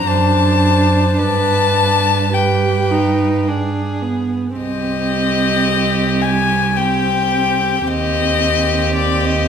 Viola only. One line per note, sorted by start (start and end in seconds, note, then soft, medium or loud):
0.06 1.15 D4 medium
1.17 2.30 D4 medium
2.33 2.92 G4 medium
2.91 3.49 D#4 medium
3.48 4.03 D4 soft
4.02 4.56 B3 soft
4.57 6.72 C4 medium
6.77 7.86 C4 medium
7.88 9.48 C4 medium